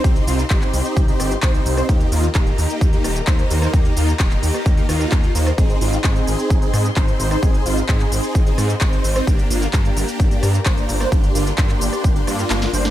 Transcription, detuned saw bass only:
\new Staff \with { instrumentName = "Detuned saw bass" } { \clef bass \time 4/4 \key ees \major \tempo 4 = 130 c,8 c,8 g,,8 c,8 c,8 g,,8 c,8 c,8 | ees,8 ees,8 ees,,8 ees,8 ees,8 ees,,8 ees,8 ees,8 | ees,8 ees,8 ees,,8 ees,8 ees,8 ees,8 ees,8 ees,8 | aes,,8 aes,,8 aes,8 aes,,8 aes,,8 aes,8 aes,,8 aes,,8 |
aes,,8 aes,,8 aes,8 aes,,8 aes,,8 aes,8 aes,,8 aes,,8 | g,,8 g,,8 g,8 g,,8 g,,8 g,8 g,,8 g,,8 | g,,8 g,,8 g,8 g,,8 g,,8 g,8 g,,8 g,,8 | }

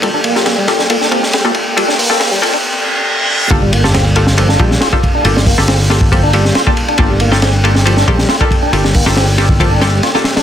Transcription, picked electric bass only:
\new Staff \with { instrumentName = "Picked electric bass" } { \clef bass \time 4/4 \key g \minor \tempo 4 = 138 r1 | r1 | g,,2~ g,,8 bes,,16 r4 r16 | g,,8. g,,2~ g,,16 r4 |
g,,2~ g,,8 bes,,16 r4 r16 | g,,8. g,,2~ g,,16 r4 | }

